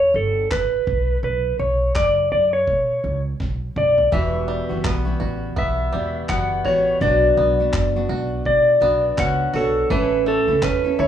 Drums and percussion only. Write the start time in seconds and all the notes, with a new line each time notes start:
0.51 kick, clap
0.87 kick
1.95 kick, clap
2.67 kick
3.40 kick, snare
3.76 mid tom
3.98 floor tom
4.12 kick
4.84 kick, clap
5.57 kick
6.29 kick, clap
7.01 kick
7.73 kick, clap
8.45 kick
9.18 kick, clap
9.90 kick
10.62 kick, clap